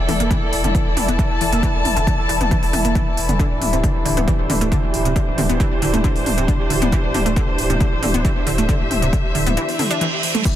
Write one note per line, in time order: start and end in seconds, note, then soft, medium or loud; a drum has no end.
0.00 10.44 E3 medium
0.00 3.39 E4 medium
0.00 10.44 E4 medium
0.00 4.86 A4 medium
0.00 4.97 D5 medium
0.00 0.54 G5 medium
0.08 0.19 E1 loud
0.08 0.12 E3 medium
0.08 open hi-hat loud
0.08 mid tom medium
0.20 0.30 E1 medium
0.20 0.25 A#3 medium
0.20 closed hi-hat medium
0.31 0.39 E3 loud
0.31 kick loud
0.31 closed hi-hat medium
0.41 4.14 A5 medium
0.53 0.64 E1 loud
0.53 open hi-hat loud
0.64 0.74 E1 medium
0.64 0.69 D3 medium
0.64 closed hi-hat medium
0.64 mid tom medium
0.75 0.80 E3 medium
0.75 kick loud
0.75 closed hi-hat medium
0.86 0.96 E1 medium
0.97 1.08 E1 medium
0.97 1.05 E3 medium
0.97 open hi-hat loud
0.97 mid tom medium
1.08 1.19 E1 medium
1.08 1.13 B3 medium
1.08 closed hi-hat medium
1.19 1.22 E3 loud
1.19 kick loud
1.19 closed hi-hat medium
1.41 1.52 E1 loud
1.41 1.44 E3 medium
1.41 open hi-hat loud
1.52 1.63 E1 medium
1.52 1.57 A#3 medium
1.52 closed hi-hat medium
1.63 1.71 E3 loud
1.63 kick loud
1.63 closed hi-hat medium
1.75 1.84 E1 medium
1.85 1.96 E1 loud
1.85 open hi-hat loud
1.85 mid tom medium
1.97 2.07 E1 medium
1.97 2.01 D3 medium
1.97 closed hi-hat medium
2.07 2.12 E3 medium
2.07 kick loud
2.07 closed hi-hat medium
2.29 2.40 E1 loud
2.29 2.37 E3 medium
2.29 open hi-hat loud
2.41 2.51 E1 medium
2.41 2.46 B3 medium
2.41 closed hi-hat medium
2.41 mid tom medium
2.51 2.54 E3 loud
2.51 kick loud
2.51 closed hi-hat medium
2.63 2.73 E1 medium
2.63 open hi-hat medium
2.73 2.84 E1 loud
2.73 2.76 E3 medium
2.73 open hi-hat loud
2.73 mid tom medium
2.85 2.95 E1 medium
2.85 2.90 A#3 medium
2.85 closed hi-hat medium
2.95 3.03 E3 loud
2.95 kick loud
2.95 closed hi-hat medium
3.17 3.28 E1 loud
3.17 open hi-hat loud
3.29 3.39 E1 medium
3.29 3.34 D3 medium
3.29 closed hi-hat medium
3.29 mid tom medium
3.39 3.47 D3 loud
3.39 10.56 D4 medium
3.39 kick loud
3.39 closed hi-hat medium
3.51 3.61 D1 medium
3.59 3.72 D1 loud
3.59 10.45 C5 medium
3.59 open hi-hat loud
3.59 mid tom medium
3.63 10.56 G4 medium
3.73 3.83 D1 medium
3.73 3.78 C3 medium
3.73 closed hi-hat medium
3.83 3.89 D3 medium
3.83 kick loud
3.83 closed hi-hat medium
4.06 4.16 D1 loud
4.06 4.14 D3 medium
4.06 open hi-hat loud
4.17 4.27 D1 medium
4.17 4.22 B3 medium
4.17 closed hi-hat medium
4.17 mid tom medium
4.28 4.31 E3 loud
4.28 kick loud
4.28 closed hi-hat medium
4.39 4.49 D1 medium
4.50 4.61 D1 loud
4.50 4.53 D3 medium
4.50 open hi-hat loud
4.50 mid tom loud
4.61 4.72 D1 medium
4.61 4.66 A3 medium
4.61 closed hi-hat medium
4.72 4.80 D3 loud
4.72 kick loud
4.72 closed hi-hat medium
4.94 5.05 D1 loud
4.94 open hi-hat loud
5.05 5.16 D1 medium
5.05 5.10 C3 medium
5.05 closed hi-hat medium
5.16 5.21 D3 medium
5.16 kick loud
5.16 closed hi-hat medium
5.27 5.37 D1 medium
5.38 5.49 D1 loud
5.38 5.46 D3 medium
5.38 open hi-hat medium
5.38 mid tom loud
5.49 5.60 D1 medium
5.49 5.54 B3 medium
5.49 closed hi-hat medium
5.60 5.63 E3 loud
5.60 kick loud
5.60 closed hi-hat medium
5.82 5.93 D1 loud
5.82 5.85 D3 medium
5.82 open hi-hat loud
5.94 6.04 D1 medium
5.94 5.98 A3 medium
5.94 closed hi-hat medium
5.94 mid tom medium
6.04 6.12 D3 loud
6.04 kick loud
6.04 closed hi-hat medium
6.16 6.26 D1 medium
6.16 open hi-hat medium
6.26 6.37 D1 loud
6.26 open hi-hat loud
6.26 mid tom loud
6.38 6.48 D1 medium
6.38 6.43 C3 medium
6.38 closed hi-hat medium
6.48 6.54 D3 medium
6.48 kick loud
6.48 closed hi-hat medium
6.70 6.81 D1 loud
6.70 6.78 D3 medium
6.70 open hi-hat loud
6.82 6.92 D1 medium
6.82 6.87 B3 medium
6.82 closed hi-hat medium
6.82 mid tom medium
6.92 6.96 E3 loud
6.92 kick loud
6.92 closed hi-hat medium
7.04 7.14 D1 medium
7.14 7.25 D1 loud
7.14 7.18 D3 medium
7.14 open hi-hat loud
7.14 mid tom medium
7.26 7.36 D1 medium
7.26 7.31 A3 medium
7.26 closed hi-hat medium
7.36 7.44 D3 loud
7.36 kick loud
7.36 closed hi-hat medium
7.58 7.69 D1 loud
7.58 open hi-hat loud
7.70 7.80 D1 medium
7.70 7.75 C3 medium
7.70 closed hi-hat medium
7.70 mid tom medium
7.74 10.56 E5 medium
7.80 7.86 D3 medium
7.80 kick loud
7.80 closed hi-hat medium
7.92 8.02 D1 medium
8.03 8.14 D1 loud
8.03 8.11 D3 medium
8.03 open hi-hat loud
8.03 mid tom medium
8.14 8.24 D1 medium
8.14 8.19 B3 medium
8.14 closed hi-hat medium
8.25 8.28 E3 loud
8.25 kick loud
8.25 closed hi-hat medium
8.47 8.58 D1 loud
8.47 8.50 D3 medium
8.47 open hi-hat loud
8.58 8.69 D1 medium
8.58 8.63 A3 medium
8.58 closed hi-hat medium
8.69 8.77 D3 loud
8.69 kick loud
8.69 closed hi-hat medium
8.80 8.90 D1 medium
8.91 9.02 D1 loud
8.91 open hi-hat loud
8.91 mid tom medium
9.02 9.13 D1 medium
9.02 9.07 C3 medium
9.02 closed hi-hat medium
9.13 9.18 D3 medium
9.13 kick loud
9.13 closed hi-hat medium
9.35 9.46 D1 loud
9.35 9.43 D3 medium
9.35 open hi-hat loud
9.46 9.57 D1 medium
9.46 9.51 B3 medium
9.46 closed hi-hat medium
9.46 mid tom medium
9.57 9.60 E3 loud
9.57 closed hi-hat medium
9.57 reverse cymbal medium
9.69 open hi-hat medium
9.79 9.84 D3 medium
9.79 open hi-hat loud
9.79 mid tom medium
9.91 9.96 D4 loud
9.91 closed hi-hat medium
10.01 10.06 E3 medium
10.01 closed hi-hat medium
10.23 open hi-hat loud
10.35 10.38 A3 loud
10.35 closed hi-hat medium
10.35 mid tom medium
10.45 10.53 E3 loud
10.45 10.56 E3 medium
10.45 10.56 E4 medium
10.45 kick loud
10.45 closed hi-hat medium
10.45 crash medium
10.45 shaker soft